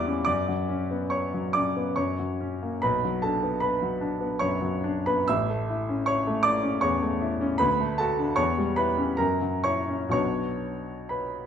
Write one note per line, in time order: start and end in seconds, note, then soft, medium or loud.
0.00 0.23 E2 medium
0.00 0.28 G3 soft
0.00 0.18 E4 soft
0.00 0.23 D5 medium
0.00 0.29 E5 medium
0.00 0.23 D6 medium
0.00 0.29 E6 medium
0.06 0.27 C#4 soft
0.25 1.91 F#2 soft
0.25 1.06 D5 medium
0.25 1.09 D6 medium
0.48 0.81 F#3 soft
0.69 1.02 C#4 soft
0.91 1.57 B3 soft
1.10 1.50 C#5 soft
1.10 1.52 C#6 soft
1.34 1.67 F#3 soft
1.53 1.88 C#4 soft
1.53 1.93 D5 soft
1.53 1.96 D6 medium
1.77 1.97 B3 soft
1.96 2.79 F#2 soft
1.96 2.78 C#5 soft
1.96 2.81 C#6 soft
2.19 2.53 F#3 soft
2.41 2.74 C#4 soft
2.62 2.82 A#3 soft
2.82 5.24 B1 soft
2.82 3.20 B4 soft
2.82 3.22 B5 medium
3.04 3.35 F#3 soft
3.22 3.55 D4 soft
3.22 3.59 A4 soft
3.22 3.61 A5 medium
3.43 4.05 B3 soft
3.60 4.36 B4 soft
3.60 4.39 B5 medium
3.82 4.13 F#3 soft
4.01 4.32 D4 soft
4.21 4.53 B3 soft
4.39 4.75 F#2 soft
4.39 5.02 C#5 soft
4.39 5.05 C#6 medium
4.62 4.97 F#3 soft
4.84 5.19 D4 soft
5.06 5.28 B3 soft
5.06 5.26 B4 soft
5.06 5.27 B5 medium
5.28 7.56 A1 medium
5.28 6.04 E5 medium
5.28 6.08 E6 medium
5.50 5.81 A3 soft
5.70 6.01 E4 soft
5.89 6.50 C#4 soft
6.06 6.43 C#5 medium
6.06 6.45 C#6 medium
6.27 6.57 A3 soft
6.43 6.75 E4 soft
6.43 6.79 D5 medium
6.43 6.81 D6 medium
6.63 6.93 C#4 soft
6.81 7.13 E2 soft
6.81 7.55 C#5 soft
6.81 7.58 C#6 medium
7.02 7.32 A3 soft
7.22 7.52 E4 medium
7.41 7.60 C#4 soft
7.58 8.36 D2 medium
7.58 7.96 B4 medium
7.58 7.98 B5 medium
7.80 8.11 A3 soft
7.98 8.31 F#4 soft
7.98 8.35 A4 medium
7.98 8.37 A5 medium
8.19 8.38 D4 soft
8.36 9.17 E2 medium
8.36 8.74 C#5 medium
8.36 8.77 C#6 medium
8.58 8.90 G3 soft
8.76 9.11 E4 soft
8.76 9.17 B4 medium
8.76 9.19 B5 medium
8.97 9.19 C#4 soft
9.17 10.10 F#2 medium
9.17 9.61 A#4 soft
9.17 9.63 A#5 medium
9.41 9.79 F#3 soft
9.64 10.04 E4 soft
9.64 10.10 C#5 soft
9.64 10.10 C#6 medium
9.89 10.13 C#4 soft
10.09 11.46 B1 soft
10.09 11.46 F#3 soft
10.09 11.46 B3 soft
10.09 11.46 D4 soft
10.09 11.06 C#5 soft
10.09 11.10 C#6 medium
11.09 11.46 B4 soft
11.09 11.46 B5 soft